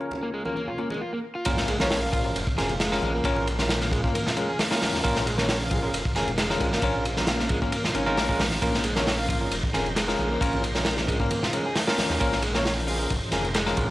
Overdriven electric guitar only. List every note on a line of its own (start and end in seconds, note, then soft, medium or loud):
0.23 0.28 A#3 medium
0.34 0.43 G#3 medium
0.45 0.55 A#3 medium
0.56 0.67 A#3 loud
0.68 0.78 F4 medium
0.79 0.88 A#3 medium
0.91 1.00 G#3 medium
1.01 1.10 F4 medium
1.13 1.18 A#3 medium
1.35 1.45 F4 loud
1.46 1.57 A#3 medium
1.68 1.79 G#3 loud
1.80 1.88 A#3 loud
2.13 2.22 F4 loud
2.58 2.69 G#4 loud
2.81 3.02 G#3 loud
3.03 3.12 G#3 medium
3.15 3.24 A#3 medium
3.25 3.36 C#4 medium
3.82 3.87 A#3 medium
3.92 4.01 G#3 medium
4.04 4.13 A#3 medium
4.15 4.26 A#3 loud
4.26 4.36 F4 loud
4.37 4.46 G#3 medium
4.49 4.57 G#4 loud
4.71 4.76 A#3 medium
5.04 5.15 A#3 medium
5.26 5.37 G#3 loud
5.38 5.46 A#3 loud
5.71 5.80 F4 loud
6.16 6.27 G#4 loud
6.38 6.59 G#3 loud
6.61 6.70 G#3 medium
6.73 6.82 A#3 medium
6.83 6.94 C#4 medium
7.40 7.45 A#3 medium
7.50 7.59 G#3 medium
7.62 7.71 A#3 medium
7.72 7.84 A#3 loud
7.85 7.95 F4 loud
7.95 8.04 C#4 medium
8.07 8.15 D#4 medium
8.17 8.27 A#4 loud
8.29 8.38 G#3 medium
8.62 8.73 A#3 medium
8.85 8.95 G#3 loud
8.97 9.05 A#3 loud
9.29 9.39 F4 loud
9.74 9.85 G#4 loud
9.97 10.18 G#3 loud
10.19 10.28 G#3 medium
10.31 10.40 A#3 medium
10.42 10.53 C#4 medium
10.98 11.03 A#3 medium
11.09 11.18 G#3 medium
11.21 11.30 A#3 medium
11.31 11.42 A#3 loud
11.43 11.53 F4 loud
11.54 11.63 G#3 medium
11.66 11.74 G#4 loud
11.88 11.92 A#3 medium
12.21 12.32 A#3 medium
12.43 12.53 G#3 loud
12.55 12.63 A#3 loud
12.88 12.97 F4 loud
13.33 13.44 G#4 loud
13.55 13.76 G#3 loud
13.77 13.87 G#3 medium